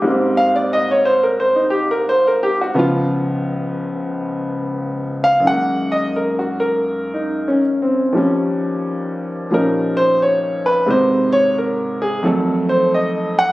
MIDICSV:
0, 0, Header, 1, 2, 480
1, 0, Start_track
1, 0, Key_signature, -4, "major"
1, 0, Tempo, 677201
1, 27, Time_signature, 4, 2, 24, 8
1, 9584, End_track
2, 0, Start_track
2, 0, Title_t, "Upright piano"
2, 0, Program_c, 0, 0
2, 0, Note_on_c, 0, 67, 51
2, 14, Note_on_c, 0, 44, 52
2, 28, Note_on_c, 0, 55, 49
2, 41, Note_on_c, 0, 58, 48
2, 54, Note_on_c, 0, 60, 55
2, 127, Note_off_c, 0, 67, 0
2, 265, Note_on_c, 0, 77, 91
2, 382, Note_off_c, 0, 77, 0
2, 395, Note_on_c, 0, 74, 79
2, 487, Note_off_c, 0, 74, 0
2, 518, Note_on_c, 0, 75, 83
2, 645, Note_on_c, 0, 73, 75
2, 666, Note_off_c, 0, 75, 0
2, 747, Note_on_c, 0, 72, 84
2, 809, Note_off_c, 0, 73, 0
2, 862, Note_off_c, 0, 72, 0
2, 875, Note_on_c, 0, 70, 73
2, 967, Note_off_c, 0, 70, 0
2, 991, Note_on_c, 0, 72, 81
2, 1104, Note_on_c, 0, 63, 51
2, 1143, Note_off_c, 0, 72, 0
2, 1207, Note_on_c, 0, 67, 75
2, 1278, Note_off_c, 0, 63, 0
2, 1331, Note_off_c, 0, 67, 0
2, 1354, Note_on_c, 0, 70, 73
2, 1446, Note_off_c, 0, 70, 0
2, 1482, Note_on_c, 0, 72, 82
2, 1613, Note_on_c, 0, 70, 72
2, 1627, Note_off_c, 0, 72, 0
2, 1722, Note_on_c, 0, 67, 74
2, 1772, Note_off_c, 0, 70, 0
2, 1829, Note_off_c, 0, 67, 0
2, 1853, Note_on_c, 0, 66, 70
2, 1935, Note_off_c, 0, 66, 0
2, 1936, Note_off_c, 0, 44, 0
2, 1943, Note_off_c, 0, 55, 0
2, 1945, Note_on_c, 0, 37, 58
2, 1947, Note_on_c, 0, 49, 55
2, 1949, Note_off_c, 0, 58, 0
2, 1952, Note_on_c, 0, 59, 66
2, 1954, Note_on_c, 0, 53, 55
2, 1955, Note_off_c, 0, 60, 0
2, 1977, Note_on_c, 0, 65, 76
2, 2158, Note_off_c, 0, 65, 0
2, 3713, Note_on_c, 0, 77, 91
2, 3827, Note_on_c, 0, 42, 51
2, 3855, Note_on_c, 0, 51, 47
2, 3860, Note_off_c, 0, 37, 0
2, 3861, Note_off_c, 0, 49, 0
2, 3861, Note_off_c, 0, 77, 0
2, 3863, Note_off_c, 0, 59, 0
2, 3864, Note_off_c, 0, 53, 0
2, 3879, Note_on_c, 0, 78, 99
2, 3881, Note_on_c, 0, 56, 46
2, 3906, Note_on_c, 0, 58, 54
2, 4178, Note_off_c, 0, 78, 0
2, 4194, Note_on_c, 0, 75, 85
2, 4342, Note_off_c, 0, 75, 0
2, 4368, Note_on_c, 0, 70, 72
2, 4508, Note_off_c, 0, 70, 0
2, 4529, Note_on_c, 0, 66, 58
2, 4669, Note_off_c, 0, 66, 0
2, 4678, Note_on_c, 0, 70, 76
2, 5062, Note_on_c, 0, 63, 45
2, 5301, Note_on_c, 0, 61, 52
2, 5386, Note_off_c, 0, 70, 0
2, 5395, Note_off_c, 0, 63, 0
2, 5544, Note_on_c, 0, 60, 52
2, 5671, Note_off_c, 0, 61, 0
2, 5752, Note_off_c, 0, 51, 0
2, 5758, Note_on_c, 0, 39, 49
2, 5762, Note_off_c, 0, 42, 0
2, 5763, Note_on_c, 0, 51, 47
2, 5768, Note_on_c, 0, 53, 48
2, 5781, Note_on_c, 0, 55, 43
2, 5789, Note_off_c, 0, 56, 0
2, 5792, Note_on_c, 0, 61, 56
2, 5802, Note_off_c, 0, 58, 0
2, 5876, Note_off_c, 0, 60, 0
2, 6728, Note_off_c, 0, 53, 0
2, 6735, Note_off_c, 0, 55, 0
2, 6739, Note_on_c, 0, 53, 44
2, 6743, Note_off_c, 0, 61, 0
2, 6746, Note_on_c, 0, 55, 43
2, 6748, Note_on_c, 0, 46, 41
2, 6754, Note_on_c, 0, 61, 43
2, 6760, Note_on_c, 0, 63, 51
2, 6762, Note_on_c, 0, 70, 73
2, 7061, Note_off_c, 0, 70, 0
2, 7066, Note_on_c, 0, 72, 88
2, 7218, Note_off_c, 0, 72, 0
2, 7246, Note_on_c, 0, 73, 81
2, 7543, Note_off_c, 0, 73, 0
2, 7555, Note_on_c, 0, 71, 83
2, 7690, Note_off_c, 0, 39, 0
2, 7693, Note_off_c, 0, 51, 0
2, 7699, Note_on_c, 0, 44, 58
2, 7700, Note_off_c, 0, 53, 0
2, 7704, Note_off_c, 0, 55, 0
2, 7704, Note_off_c, 0, 71, 0
2, 7704, Note_on_c, 0, 56, 53
2, 7705, Note_off_c, 0, 46, 0
2, 7706, Note_on_c, 0, 51, 48
2, 7708, Note_off_c, 0, 61, 0
2, 7710, Note_on_c, 0, 48, 65
2, 7711, Note_off_c, 0, 63, 0
2, 7730, Note_on_c, 0, 72, 83
2, 8026, Note_off_c, 0, 72, 0
2, 8027, Note_on_c, 0, 73, 101
2, 8180, Note_off_c, 0, 73, 0
2, 8209, Note_on_c, 0, 70, 74
2, 8506, Note_off_c, 0, 70, 0
2, 8518, Note_on_c, 0, 68, 84
2, 8659, Note_off_c, 0, 51, 0
2, 8662, Note_off_c, 0, 44, 0
2, 8664, Note_off_c, 0, 56, 0
2, 8664, Note_on_c, 0, 41, 62
2, 8666, Note_off_c, 0, 68, 0
2, 8667, Note_off_c, 0, 48, 0
2, 8669, Note_on_c, 0, 51, 56
2, 8671, Note_on_c, 0, 54, 55
2, 8675, Note_on_c, 0, 57, 66
2, 8690, Note_on_c, 0, 69, 71
2, 8987, Note_off_c, 0, 69, 0
2, 8997, Note_on_c, 0, 72, 84
2, 9146, Note_off_c, 0, 72, 0
2, 9175, Note_on_c, 0, 75, 75
2, 9470, Note_off_c, 0, 75, 0
2, 9488, Note_on_c, 0, 78, 115
2, 9584, Note_off_c, 0, 41, 0
2, 9584, Note_off_c, 0, 51, 0
2, 9584, Note_off_c, 0, 54, 0
2, 9584, Note_off_c, 0, 57, 0
2, 9584, Note_off_c, 0, 78, 0
2, 9584, End_track
0, 0, End_of_file